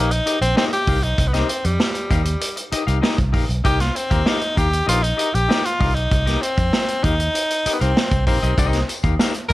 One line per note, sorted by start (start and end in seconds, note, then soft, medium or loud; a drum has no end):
0.00 0.19 A#1 medium
0.00 0.13 A#3 medium
0.11 0.41 D#4 medium
0.11 muted clean electric guitar stroke soft
0.11 closed hi-hat medium
0.26 0.36 D#4 medium
0.26 0.37 G4 medium
0.26 0.37 A#4 medium
0.26 0.37 D#5 medium
0.26 closed hi-hat medium
0.41 0.53 A#1 medium
0.41 0.56 C4 loud
0.41 closed hi-hat medium
0.56 0.65 C4 loud
0.56 0.69 D#4 medium
0.56 0.70 G4 medium
0.56 0.70 A#4 medium
0.56 0.70 D#5 medium
0.56 snare loud
0.72 1.05 G4 loud
0.72 muted clean electric guitar stroke soft
0.72 closed hi-hat medium
0.87 1.04 C2 loud
0.87 0.98 D#4 medium
0.87 0.98 G4 medium
0.87 0.98 A#4 medium
0.87 0.98 F5 medium
0.87 kick loud
0.87 open hi-hat medium
1.02 1.15 B1 medium
1.02 1.29 D#4 medium
1.02 muted clean electric guitar stroke soft
1.02 closed hi-hat soft
1.18 1.42 C2 medium
1.18 muted clean electric guitar stroke soft
1.18 kick medium
1.18 closed hi-hat medium
1.27 1.35 B3 medium
1.33 1.67 C4 medium
1.33 1.47 D#4 medium
1.33 1.47 G4 medium
1.33 1.47 A#4 medium
1.33 1.47 D#5 medium
1.33 snare soft
1.33 closed hi-hat soft
1.49 muted clean electric guitar stroke soft
1.49 closed hi-hat medium
1.64 1.77 F2 medium
1.64 2.58 G3 medium
1.64 muted clean electric guitar stroke soft
1.64 closed hi-hat soft
1.80 muted clean electric guitar stroke soft
1.80 snare loud
1.95 closed hi-hat medium
2.10 2.35 D#2 loud
2.10 2.21 D#4 medium
2.10 2.21 G4 medium
2.10 2.21 A#4 medium
2.10 2.22 F5 medium
2.10 kick medium
2.10 closed hi-hat medium
2.25 muted clean electric guitar stroke soft
2.25 closed hi-hat medium
2.41 muted clean electric guitar stroke soft
2.41 closed hi-hat loud
2.56 muted clean electric guitar stroke soft
2.56 closed hi-hat medium
2.72 2.82 D#4 medium
2.72 2.83 G4 medium
2.72 2.83 A#4 medium
2.72 2.83 D#5 medium
2.72 muted fingered electric bass stroke soft
2.72 closed hi-hat medium
2.87 2.99 C2 medium
2.87 2.98 D#4 soft
2.87 2.98 G4 medium
2.87 2.98 A#4 medium
2.87 2.98 F5 medium
2.87 closed hi-hat medium
3.02 3.15 D#4 medium
3.02 3.16 G4 medium
3.02 3.16 A#4 medium
3.02 3.16 D#5 medium
3.02 snare loud
3.18 3.34 C2 medium
3.18 muted clean electric guitar stroke medium
3.18 kick loud
3.18 closed hi-hat medium
3.32 3.46 A#1 loud
3.32 3.43 D#4 medium
3.32 3.44 G4 medium
3.32 3.44 A#4 medium
3.32 3.44 F5 medium
3.32 kick medium
3.32 open hi-hat medium
3.48 3.61 B1 medium
3.48 muted clean electric guitar stroke soft
3.48 closed hi-hat soft
3.64 3.89 C2 medium
3.64 3.77 D#4 medium
3.64 3.78 G4 medium
3.64 3.82 G4 loud
3.64 3.78 A#4 medium
3.64 3.78 D#5 loud
3.64 kick loud
3.64 closed hi-hat medium
3.80 3.98 F4 medium
3.80 snare soft
3.80 closed hi-hat soft
3.95 4.30 C4 medium
3.95 muted clean electric guitar stroke soft
3.95 closed hi-hat medium
4.10 4.23 D#2 medium
4.10 4.22 D#4 medium
4.10 4.21 G4 medium
4.10 4.21 A#4 medium
4.10 4.21 F5 medium
4.10 kick medium
4.10 closed hi-hat soft
4.25 4.39 D#4 medium
4.25 4.59 D#4 medium
4.25 4.39 G4 medium
4.25 4.39 A#4 medium
4.25 4.40 F5 medium
4.25 snare loud
4.41 muted clean electric guitar stroke soft
4.41 closed hi-hat soft
4.56 4.81 D#2 medium
4.56 4.67 D#4 medium
4.56 4.67 G4 medium
4.56 4.88 G4 loud
4.56 4.67 A#4 medium
4.56 4.67 F5 medium
4.56 kick medium
4.56 closed hi-hat medium
4.71 muted clean electric guitar stroke medium
4.71 closed hi-hat medium
4.86 5.12 A#1 medium
4.86 5.00 D#4 medium
4.86 5.04 F4 loud
4.86 5.00 G4 medium
4.86 5.01 A#4 medium
4.86 5.01 D#5 medium
4.86 closed hi-hat loud
5.02 5.36 D#4 medium
5.02 muted clean electric guitar stroke soft
5.02 closed hi-hat medium
5.17 5.28 D#4 medium
5.17 5.28 G4 medium
5.17 5.29 A#4 medium
5.17 5.29 D#5 medium
5.17 closed hi-hat medium
5.33 5.46 A#1 medium
5.33 5.66 G4 loud
5.33 muted clean electric guitar stroke soft
5.33 closed hi-hat soft
5.48 5.62 D#4 medium
5.48 5.62 G4 medium
5.48 5.63 A#4 medium
5.48 5.63 D#5 medium
5.48 snare loud
5.64 5.96 F4 medium
5.64 muted clean electric guitar stroke soft
5.64 closed hi-hat medium
5.79 5.96 C2 loud
5.79 5.90 D#4 medium
5.79 5.90 G4 medium
5.79 5.91 A#4 medium
5.79 5.91 F5 medium
5.79 kick loud
5.79 open hi-hat medium
5.95 6.08 B1 medium
5.95 6.43 D#4 medium
5.95 muted clean electric guitar stroke soft
5.95 closed hi-hat soft
6.11 6.35 C2 loud
6.11 muted clean electric guitar stroke soft
6.11 kick loud
6.11 closed hi-hat medium
6.26 6.40 D#4 medium
6.26 6.40 G4 medium
6.26 6.40 A#4 medium
6.26 6.39 D#5 medium
6.26 snare soft
6.26 closed hi-hat soft
6.42 7.05 C4 medium
6.42 muted clean electric guitar stroke soft
6.42 closed hi-hat medium
6.57 6.70 F2 medium
6.57 muted clean electric guitar stroke soft
6.57 kick medium
6.57 closed hi-hat soft
6.72 muted clean electric guitar stroke soft
6.72 snare loud
6.88 closed hi-hat medium
7.03 7.28 D#2 medium
7.03 7.13 D#4 medium
7.03 7.75 D#4 loud
7.03 7.14 G4 medium
7.03 7.14 A#4 medium
7.03 7.14 F5 medium
7.03 kick loud
7.03 closed hi-hat medium
7.19 muted clean electric guitar stroke soft
7.19 closed hi-hat medium
7.34 muted clean electric guitar stroke soft
7.34 closed hi-hat loud
7.50 muted clean electric guitar stroke soft
7.50 closed hi-hat medium
7.66 7.76 D#4 medium
7.66 7.76 G4 medium
7.66 7.76 A#4 medium
7.66 7.76 D#5 medium
7.66 muted fingered electric bass stroke soft
7.66 closed hi-hat medium
7.73 7.83 B3 medium
7.81 7.93 C2 medium
7.81 8.26 C4 medium
7.81 7.92 D#4 soft
7.81 7.91 G4 medium
7.81 7.91 A#4 medium
7.81 7.91 F5 medium
7.81 closed hi-hat soft
7.97 muted clean electric guitar stroke soft
7.97 snare loud
8.11 8.27 C2 medium
8.11 muted clean electric guitar stroke soft
8.11 kick loud
8.11 closed hi-hat medium
8.27 8.39 A#1 medium
8.27 8.84 C4 medium
8.27 8.37 D#4 medium
8.27 8.37 G4 medium
8.27 8.38 A#4 medium
8.27 8.38 F5 medium
8.27 kick medium
8.27 open hi-hat medium
8.43 8.55 B1 medium
8.43 8.53 D#4 medium
8.43 8.53 G4 medium
8.43 8.53 A#4 medium
8.43 8.53 D#5 medium
8.43 closed hi-hat soft
8.57 8.81 C2 medium
8.57 8.77 D#4 medium
8.57 8.78 G4 medium
8.57 8.78 A#4 medium
8.57 8.78 D#5 loud
8.57 kick medium
8.57 closed hi-hat medium
8.57 tambourine medium
8.73 snare soft
8.73 closed hi-hat soft
8.88 muted clean electric guitar stroke medium
8.88 closed hi-hat medium
8.88 tambourine medium
9.03 9.16 D#2 medium
9.03 9.15 D#4 medium
9.03 9.14 G4 medium
9.03 9.14 A#4 medium
9.03 9.14 F5 medium
9.03 kick medium
9.03 closed hi-hat soft
9.19 9.32 D#4 medium
9.19 9.33 G4 medium
9.19 9.33 A#4 medium
9.19 9.33 F5 medium
9.19 snare loud
9.19 tambourine medium
9.34 muted clean electric guitar stroke soft
9.34 closed hi-hat medium
9.49 9.53 D#2 loud
9.49 9.53 A#4 loud